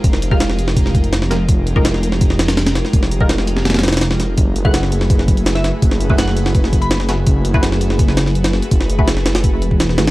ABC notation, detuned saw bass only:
X:1
M:4/4
L:1/8
Q:1/4=166
K:Gblyd
V:1 name="Detuned saw bass" clef=bass
F,,,4 F,,,4 | F,,,6- F,,, z | F,,,4 F,,,4 | G,,,6- G,,, z |
G,,,4 G,,,4 | G,,,6- G,,, z | G,,,4- G,,, _F,,,2 A,,, |]